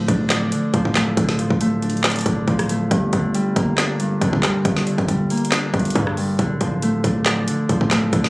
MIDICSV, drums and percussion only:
0, 0, Header, 1, 2, 480
1, 0, Start_track
1, 0, Key_signature, -1, "minor"
1, 0, Tempo, 434783
1, 1294, Time_signature, 4, 2, 24, 8
1, 9152, End_track
2, 0, Start_track
2, 0, Title_t, "Drums"
2, 93, Note_on_c, 9, 36, 101
2, 94, Note_on_c, 9, 42, 70
2, 203, Note_off_c, 9, 36, 0
2, 204, Note_off_c, 9, 42, 0
2, 333, Note_on_c, 9, 38, 113
2, 333, Note_on_c, 9, 39, 92
2, 334, Note_on_c, 9, 42, 83
2, 443, Note_off_c, 9, 38, 0
2, 443, Note_off_c, 9, 39, 0
2, 444, Note_off_c, 9, 42, 0
2, 574, Note_on_c, 9, 42, 77
2, 684, Note_off_c, 9, 42, 0
2, 813, Note_on_c, 9, 36, 89
2, 814, Note_on_c, 9, 42, 65
2, 924, Note_off_c, 9, 36, 0
2, 924, Note_off_c, 9, 42, 0
2, 941, Note_on_c, 9, 36, 95
2, 1052, Note_off_c, 9, 36, 0
2, 1054, Note_on_c, 9, 38, 92
2, 1054, Note_on_c, 9, 39, 77
2, 1054, Note_on_c, 9, 42, 73
2, 1164, Note_off_c, 9, 38, 0
2, 1164, Note_off_c, 9, 39, 0
2, 1164, Note_off_c, 9, 42, 0
2, 1294, Note_on_c, 9, 36, 125
2, 1294, Note_on_c, 9, 42, 78
2, 1404, Note_off_c, 9, 36, 0
2, 1404, Note_off_c, 9, 42, 0
2, 1420, Note_on_c, 9, 38, 65
2, 1531, Note_off_c, 9, 38, 0
2, 1534, Note_on_c, 9, 42, 67
2, 1644, Note_off_c, 9, 42, 0
2, 1661, Note_on_c, 9, 36, 97
2, 1771, Note_off_c, 9, 36, 0
2, 1774, Note_on_c, 9, 42, 86
2, 1884, Note_off_c, 9, 42, 0
2, 2014, Note_on_c, 9, 42, 44
2, 2094, Note_off_c, 9, 42, 0
2, 2094, Note_on_c, 9, 42, 49
2, 2174, Note_off_c, 9, 42, 0
2, 2174, Note_on_c, 9, 42, 56
2, 2253, Note_on_c, 9, 38, 114
2, 2253, Note_on_c, 9, 39, 89
2, 2254, Note_off_c, 9, 42, 0
2, 2254, Note_on_c, 9, 42, 70
2, 2318, Note_off_c, 9, 42, 0
2, 2318, Note_on_c, 9, 42, 71
2, 2334, Note_off_c, 9, 42, 0
2, 2334, Note_on_c, 9, 42, 70
2, 2363, Note_off_c, 9, 38, 0
2, 2363, Note_off_c, 9, 39, 0
2, 2382, Note_off_c, 9, 42, 0
2, 2382, Note_on_c, 9, 42, 69
2, 2414, Note_off_c, 9, 42, 0
2, 2414, Note_on_c, 9, 42, 76
2, 2438, Note_off_c, 9, 42, 0
2, 2438, Note_on_c, 9, 42, 70
2, 2493, Note_on_c, 9, 36, 103
2, 2494, Note_off_c, 9, 42, 0
2, 2494, Note_on_c, 9, 42, 72
2, 2604, Note_off_c, 9, 36, 0
2, 2604, Note_off_c, 9, 42, 0
2, 2733, Note_on_c, 9, 36, 90
2, 2734, Note_on_c, 9, 42, 41
2, 2844, Note_off_c, 9, 36, 0
2, 2844, Note_off_c, 9, 42, 0
2, 2861, Note_on_c, 9, 37, 101
2, 2861, Note_on_c, 9, 42, 72
2, 2971, Note_off_c, 9, 37, 0
2, 2971, Note_off_c, 9, 42, 0
2, 2974, Note_on_c, 9, 42, 80
2, 3084, Note_off_c, 9, 42, 0
2, 3214, Note_on_c, 9, 36, 123
2, 3214, Note_on_c, 9, 42, 79
2, 3324, Note_off_c, 9, 36, 0
2, 3324, Note_off_c, 9, 42, 0
2, 3453, Note_on_c, 9, 42, 72
2, 3455, Note_on_c, 9, 36, 90
2, 3563, Note_off_c, 9, 42, 0
2, 3565, Note_off_c, 9, 36, 0
2, 3693, Note_on_c, 9, 42, 82
2, 3804, Note_off_c, 9, 42, 0
2, 3932, Note_on_c, 9, 36, 103
2, 3933, Note_on_c, 9, 42, 71
2, 4043, Note_off_c, 9, 36, 0
2, 4043, Note_off_c, 9, 42, 0
2, 4173, Note_on_c, 9, 38, 116
2, 4173, Note_on_c, 9, 39, 89
2, 4174, Note_on_c, 9, 42, 80
2, 4283, Note_off_c, 9, 38, 0
2, 4283, Note_off_c, 9, 39, 0
2, 4284, Note_off_c, 9, 42, 0
2, 4414, Note_on_c, 9, 42, 76
2, 4524, Note_off_c, 9, 42, 0
2, 4653, Note_on_c, 9, 36, 87
2, 4654, Note_on_c, 9, 42, 65
2, 4763, Note_off_c, 9, 36, 0
2, 4764, Note_off_c, 9, 42, 0
2, 4781, Note_on_c, 9, 36, 103
2, 4891, Note_off_c, 9, 36, 0
2, 4894, Note_on_c, 9, 38, 94
2, 4894, Note_on_c, 9, 39, 77
2, 4894, Note_on_c, 9, 42, 71
2, 5004, Note_off_c, 9, 38, 0
2, 5004, Note_off_c, 9, 39, 0
2, 5004, Note_off_c, 9, 42, 0
2, 5134, Note_on_c, 9, 36, 122
2, 5134, Note_on_c, 9, 42, 80
2, 5244, Note_off_c, 9, 36, 0
2, 5244, Note_off_c, 9, 42, 0
2, 5261, Note_on_c, 9, 38, 69
2, 5371, Note_off_c, 9, 38, 0
2, 5374, Note_on_c, 9, 42, 67
2, 5485, Note_off_c, 9, 42, 0
2, 5501, Note_on_c, 9, 36, 97
2, 5501, Note_on_c, 9, 42, 41
2, 5611, Note_off_c, 9, 36, 0
2, 5612, Note_off_c, 9, 42, 0
2, 5613, Note_on_c, 9, 36, 94
2, 5614, Note_on_c, 9, 42, 90
2, 5724, Note_off_c, 9, 36, 0
2, 5724, Note_off_c, 9, 42, 0
2, 5854, Note_on_c, 9, 42, 45
2, 5854, Note_on_c, 9, 46, 55
2, 5934, Note_off_c, 9, 42, 0
2, 5934, Note_on_c, 9, 42, 59
2, 5965, Note_off_c, 9, 46, 0
2, 6014, Note_off_c, 9, 42, 0
2, 6014, Note_on_c, 9, 42, 75
2, 6093, Note_on_c, 9, 38, 113
2, 6093, Note_on_c, 9, 39, 93
2, 6094, Note_off_c, 9, 42, 0
2, 6094, Note_on_c, 9, 42, 79
2, 6203, Note_off_c, 9, 38, 0
2, 6203, Note_off_c, 9, 39, 0
2, 6204, Note_off_c, 9, 42, 0
2, 6333, Note_on_c, 9, 36, 102
2, 6333, Note_on_c, 9, 42, 42
2, 6398, Note_off_c, 9, 42, 0
2, 6398, Note_on_c, 9, 42, 55
2, 6443, Note_off_c, 9, 36, 0
2, 6461, Note_off_c, 9, 42, 0
2, 6461, Note_on_c, 9, 42, 64
2, 6518, Note_off_c, 9, 42, 0
2, 6518, Note_on_c, 9, 42, 73
2, 6574, Note_off_c, 9, 42, 0
2, 6574, Note_on_c, 9, 36, 90
2, 6574, Note_on_c, 9, 42, 67
2, 6684, Note_off_c, 9, 36, 0
2, 6685, Note_off_c, 9, 42, 0
2, 6701, Note_on_c, 9, 37, 103
2, 6812, Note_off_c, 9, 37, 0
2, 6814, Note_on_c, 9, 46, 57
2, 6924, Note_off_c, 9, 46, 0
2, 7054, Note_on_c, 9, 36, 118
2, 7054, Note_on_c, 9, 42, 80
2, 7164, Note_off_c, 9, 36, 0
2, 7165, Note_off_c, 9, 42, 0
2, 7294, Note_on_c, 9, 42, 74
2, 7295, Note_on_c, 9, 36, 87
2, 7404, Note_off_c, 9, 42, 0
2, 7406, Note_off_c, 9, 36, 0
2, 7534, Note_on_c, 9, 42, 83
2, 7644, Note_off_c, 9, 42, 0
2, 7773, Note_on_c, 9, 36, 103
2, 7774, Note_on_c, 9, 42, 71
2, 7883, Note_off_c, 9, 36, 0
2, 7885, Note_off_c, 9, 42, 0
2, 8013, Note_on_c, 9, 38, 111
2, 8013, Note_on_c, 9, 39, 92
2, 8014, Note_on_c, 9, 42, 78
2, 8124, Note_off_c, 9, 38, 0
2, 8124, Note_off_c, 9, 39, 0
2, 8125, Note_off_c, 9, 42, 0
2, 8254, Note_on_c, 9, 42, 77
2, 8364, Note_off_c, 9, 42, 0
2, 8494, Note_on_c, 9, 36, 87
2, 8494, Note_on_c, 9, 42, 66
2, 8604, Note_off_c, 9, 36, 0
2, 8605, Note_off_c, 9, 42, 0
2, 8621, Note_on_c, 9, 36, 99
2, 8732, Note_off_c, 9, 36, 0
2, 8734, Note_on_c, 9, 38, 94
2, 8734, Note_on_c, 9, 39, 76
2, 8734, Note_on_c, 9, 42, 71
2, 8844, Note_off_c, 9, 38, 0
2, 8844, Note_off_c, 9, 39, 0
2, 8844, Note_off_c, 9, 42, 0
2, 8974, Note_on_c, 9, 36, 121
2, 8974, Note_on_c, 9, 42, 78
2, 9084, Note_off_c, 9, 36, 0
2, 9084, Note_off_c, 9, 42, 0
2, 9101, Note_on_c, 9, 38, 67
2, 9152, Note_off_c, 9, 38, 0
2, 9152, End_track
0, 0, End_of_file